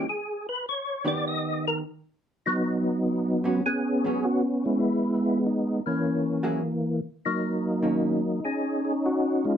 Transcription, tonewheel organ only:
X:1
M:4/4
L:1/8
Q:"Swing" 1/4=100
K:G#m
V:1 name="Tonewheel organ"
G B c =d ^d A z2 | D3 F G2 F E- | E2 D C3 z2 | D4 G G F ^E |]
V:2 name="Tonewheel organ"
z8 | [F,B,]4 [B,C]3 [G,B,]- | [G,B,]3 [E,A,]4 z | [F,A,]4 [CD]3 [G,C] |]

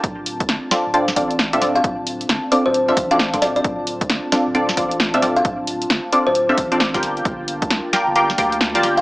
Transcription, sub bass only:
X:1
M:4/4
L:1/16
Q:"Swing 16ths" 1/4=133
K:Dm
V:1 name="Sub bass" clef=bass
D,,,4 G,,, z2 D,,,3 A,,,3 D,,,3 | D,,,4 G,,, z2 D,,,3 A,,,3 D,,,3 | D,,,4 G,,, z2 D,,,3 A,,,3 D,,,3 | D,,,4 G,,, z2 D,,,3 A,,,3 G,,,3 |
G,,,4 C,, z2 G,,,3 D,,3 G,,,3 |]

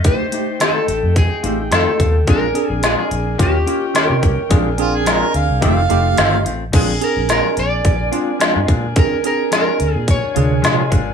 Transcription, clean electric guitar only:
X:1
M:4/4
L:1/8
Q:"Swing 16ths" 1/4=108
K:Bbmix
V:1 name="Clean electric guitar"
z2 [E,=A,CF] z2 [A,CF] [E,A,CF] [A,CF] | [F,A,DF] z [F,A,DF] z [E,B,_DG] [B,DG] [E,B,DG] [B,DG] | [F,A,DF] z [F,A,DF] z [E,=A,CF] [A,CF] [E,A,CF] [A,CF] | [F,A,DF] z [F,A,DF] z2 [A,DF] [F,A,DF] [A,DF] |
z2 [F,A,DF] z2 [A,DF] [F,A,DF] [A,DF] |]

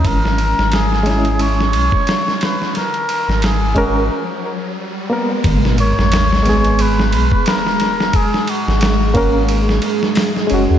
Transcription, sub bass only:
X:1
M:4/4
L:1/16
Q:"Swing 16ths" 1/4=89
K:G#m
V:1 name="Sub bass" clef=bass
G,,,3 G,,,6- G,,, B,,, z4 z | z3 G,,,4- G,,, z8 | G,,,3 G,,,6- G,,, B,,, z4 z | z3 G,,,6- G,,, z4 F,,, D,, |]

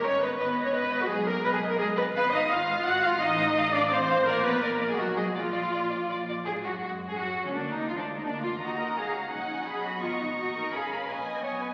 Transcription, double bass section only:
X:1
M:3/4
L:1/16
Q:1/4=170
K:G#m
V:1 name="Double bass section" clef=bass
G,,,4 G,,,4 G,,,4 | B,,,4 B,,,4 B,,,4 | [K:Bbphr] A,,,4 A,,,4 A,,,4 | =A,,,4 A,,,4 A,,,4 |
B,,,4 B,,,4 C,,4 | B,,,4 B,,,4 B,,,4 | A,,2 G,,2 G,,3 A,, G,,3 D,, | =D,,2 E,,2 F,, D,,2 E,, D,,2 F,,2 |
E,,4 D,,4 B,,,4 | =B,,,4 A,,,4 _B,,,4 | A,,,4 B,,,4 C,,4 |]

